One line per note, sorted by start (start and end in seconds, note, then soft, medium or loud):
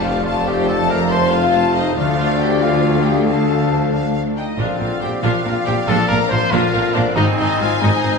0.00 1.92 F1 medium
0.00 1.93 F1 medium
0.00 1.93 F2 medium
0.00 0.67 F3 medium
0.00 1.94 F3 medium
0.00 1.94 A3 medium
0.00 0.89 C4 medium
0.00 0.25 C4 medium
0.00 0.46 F4 soft
0.00 0.23 F4 loud
0.00 0.25 F4 medium
0.00 1.09 A4 medium
0.00 0.24 C5 medium
0.00 1.34 D5 loud
0.00 1.31 F5 medium
0.00 0.25 F5 medium
0.04 0.25 F5 medium
0.24 0.45 A3 medium
0.24 0.46 F4 loud
0.24 0.35 F4 medium
0.24 0.45 A4 medium
0.24 1.53 C5 medium
0.24 0.47 F5 medium
0.24 0.46 A5 medium
0.45 0.68 C4 medium
0.45 1.74 F4 medium
0.45 0.67 G4 loud
0.45 0.70 G4 loud
0.45 0.68 C5 medium
0.45 0.68 F5 medium
0.45 0.68 G5 medium
0.67 4.58 F3 medium
0.67 0.89 A3 medium
0.67 0.89 A4 loud
0.67 0.89 A4 medium
0.67 0.89 A4 loud
0.67 0.89 A5 medium
0.67 0.90 A5 loud
0.89 1.11 C4 medium
0.89 1.99 C4 medium
0.89 1.11 A#4 loud
0.89 0.99 A#4 loud
0.89 1.11 C5 medium
0.89 1.11 F5 medium
0.89 1.11 A#5 loud
1.10 1.31 A3 medium
1.10 2.39 A4 medium
1.10 1.31 A4 medium
1.10 1.32 C5 loud
1.10 1.33 C5 loud
1.10 1.30 A5 medium
1.10 1.32 C6 loud
1.31 1.54 C4 medium
1.31 1.74 F4 loud
1.31 1.75 F4 loud
1.31 1.97 C5 medium
1.31 1.55 C5 medium
1.31 1.75 F5 loud
1.31 2.61 F5 medium
1.31 1.54 F5 medium
1.53 1.76 A3 medium
1.53 1.76 A4 medium
1.53 1.99 C5 medium
1.53 1.75 A5 medium
1.74 1.98 C4 medium
1.74 1.96 D#4 loud
1.74 1.96 D#4 medium
1.74 3.04 F4 medium
1.74 1.97 C5 medium
1.74 1.96 D#5 loud
1.74 1.94 F5 medium
1.95 4.34 D2 loud
1.95 4.34 D2 medium
1.95 4.34 D2 loud
1.95 3.26 D3 medium
1.95 2.58 F3 loud
1.95 2.58 A3 loud
1.95 2.58 D4 medium
1.95 2.16 F4 loud
1.95 2.18 F4 medium
1.95 2.58 A4 medium
1.95 3.25 D5 loud
1.95 2.57 F5 medium
1.95 2.17 F5 loud
2.17 3.48 D4 medium
2.17 2.39 F4 loud
2.17 2.28 F4 loud
2.17 2.40 F5 loud
2.39 2.61 G4 loud
2.39 2.60 G4 loud
2.39 2.62 G5 loud
2.60 3.24 F3 medium
2.60 3.24 A3 medium
2.60 3.26 D4 medium
2.60 3.03 F4 loud
2.60 3.26 A4 medium
2.60 3.25 F5 medium
2.60 3.91 F5 medium
2.60 3.05 F5 loud
3.03 4.34 F4 medium
3.03 3.26 G4 loud
3.03 3.14 G4 medium
3.03 3.28 G5 medium
3.25 4.60 D3 medium
3.25 4.34 F3 medium
3.25 4.33 A3 medium
3.25 4.37 D4 medium
3.25 3.91 A4 medium
3.25 4.37 A4 medium
3.25 3.87 F5 medium
3.25 4.24 F5 medium
3.25 3.92 A5 medium
3.49 5.65 D4 medium
3.92 7.19 F5 medium
3.92 4.12 F5 medium
4.13 5.22 D5 medium
4.13 4.21 F5 medium
4.35 4.56 D#4 medium
4.35 4.59 D#4 medium
4.35 5.01 F4 medium
4.35 4.57 D#5 medium
4.35 4.45 G5 medium
4.56 4.65 A#1 medium
4.56 4.67 A#1 medium
4.56 5.87 A#2 medium
4.56 4.66 A#2 medium
4.56 5.20 D3 medium
4.56 5.19 C4 medium
4.56 4.79 D4 medium
4.56 4.77 F4 medium
4.56 4.78 F4 medium
4.56 4.79 F4 medium
4.56 5.20 D5 medium
4.56 4.80 F5 medium
4.56 7.13 F5 medium
4.78 4.87 A#1 medium
4.78 4.89 A#1 medium
4.78 4.88 A#2 medium
4.78 6.07 C4 medium
4.78 4.88 D4 medium
4.78 5.01 F4 medium
4.78 5.02 F4 medium
4.78 4.89 A#4 medium
4.78 5.02 F5 medium
5.01 5.10 A#1 medium
5.01 5.10 A#2 medium
5.01 5.10 D4 medium
5.01 6.30 F4 medium
5.01 5.23 G4 loud
5.01 5.22 G4 medium
5.01 5.10 C5 medium
5.01 5.09 G5 medium
5.22 5.30 A#1 medium
5.22 5.32 A#1 medium
5.22 5.33 A#2 medium
5.22 6.49 D3 medium
5.22 6.49 C4 medium
5.22 5.44 D4 medium
5.22 5.43 F4 loud
5.22 5.43 F4 medium
5.22 5.33 F4 medium
5.22 6.51 D5 medium
5.22 6.51 D5 loud
5.22 5.42 F5 loud
5.43 5.53 A#1 medium
5.43 5.54 A#1 medium
5.43 5.54 A#2 medium
5.43 5.53 D4 medium
5.43 5.66 F4 loud
5.43 5.53 A#4 medium
5.43 6.72 C5 medium
5.43 5.51 F5 loud
5.65 5.75 A#1 medium
5.65 5.75 A#2 medium
5.65 5.73 D4 medium
5.65 6.94 D4 medium
5.65 5.76 G4 loud
5.65 5.74 C5 medium
5.65 5.73 G5 loud
5.87 5.96 A#1 loud
5.87 5.97 A#1 loud
5.87 7.19 A#2 loud
5.87 5.97 A#2 medium
5.87 6.07 D4 medium
5.87 6.08 F4 loud
5.87 5.97 A4 loud
5.87 6.08 A4 loud
5.87 6.09 A5 loud
6.08 6.18 A#1 medium
6.08 6.19 A#2 medium
6.08 7.37 C4 medium
6.08 6.16 D4 medium
6.08 6.30 A#4 loud
6.08 6.18 A#4 loud
6.08 6.16 A#4 medium
6.08 6.31 A#5 loud
6.30 6.39 A#1 medium
6.30 6.39 A#1 loud
6.30 6.40 A#2 medium
6.30 6.39 D4 medium
6.30 7.19 F4 medium
6.30 6.40 C5 loud
6.30 6.53 C5 loud
6.30 6.38 C5 medium
6.30 6.53 C6 loud
6.51 6.61 A#1 loud
6.51 6.60 A#1 loud
6.51 6.61 A#2 loud
6.51 7.16 D3 medium
6.51 7.16 C4 medium
6.51 6.72 D4 loud
6.51 6.95 F4 loud
6.51 6.94 F4 loud
6.51 6.73 F4 loud
6.51 7.19 A#4 loud
6.51 7.18 D5 loud
6.51 6.94 F5 loud
6.73 6.82 A#1 medium
6.73 6.82 A#1 loud
6.73 6.83 A#2 medium
6.73 6.81 D4 medium
6.73 6.81 A#4 medium
6.73 8.02 C5 loud
6.94 7.04 A#1 medium
6.94 7.03 A#1 medium
6.94 7.05 A#2 loud
6.94 7.15 D4 loud
6.94 7.02 D4 medium
6.94 7.16 D4 loud
6.94 7.19 D4 medium
6.94 7.02 C5 loud
6.94 7.17 D5 loud
7.15 7.25 G#1 loud
7.15 7.24 G#1 loud
7.15 8.19 G#2 loud
7.15 7.26 G#2 loud
7.15 7.82 D#3 loud
7.15 7.81 C4 loud
7.15 7.25 D#4 loud
7.15 7.36 D#4 loud
7.15 7.26 D#4 loud
7.15 7.24 D#5 loud
7.15 7.82 D#5 loud
7.15 8.19 G#5 loud
7.37 7.46 G#1 medium
7.37 7.47 G#2 medium
7.37 8.19 C4 medium
7.37 7.47 D#4 loud
7.37 7.46 D#4 medium
7.37 7.61 D#4 loud
7.37 7.46 G#4 medium
7.37 7.60 D#5 loud
7.59 7.68 G#1 medium
7.59 7.67 G#1 medium
7.59 7.69 G#2 medium
7.59 7.69 D#4 medium
7.59 7.83 F4 loud
7.59 7.69 F4 loud
7.59 8.19 G#4 medium
7.59 7.69 C5 medium
7.59 7.82 F5 loud
7.78 7.90 G#1 loud
7.78 8.19 D#4 loud
7.78 8.19 D#5 loud
7.82 7.91 G#2 loud
7.82 8.19 D#3 medium
7.82 8.19 C4 medium
7.82 8.03 D#4 loud
7.82 8.19 C5 loud
8.03 8.12 G#1 medium
8.03 8.12 G#2 medium
8.03 8.12 D#4 medium
8.03 8.12 G#4 medium
8.03 8.19 C5 medium